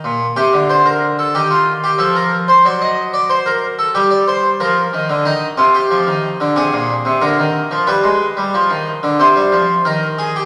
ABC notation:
X:1
M:4/4
L:1/16
Q:1/4=92
K:Cm
V:1 name="Harpsichord"
z2 G2 c B2 =A G F2 G A B2 c | d e2 d c B2 =A G d c2 B4 | E2 F G4- G A4 B4 | =B8 c4 _B2 A G |]
V:2 name="Harpsichord" clef=bass
B,,2 C, D,4- D, E,4 F,4 | ^F,8 G,4 =F,2 E, D, | E,2 C,2 F, E,2 D, C, B,,2 C, D, E,2 F, | G, A,2 G, F, E,2 D, C, G, F,2 E,4 |]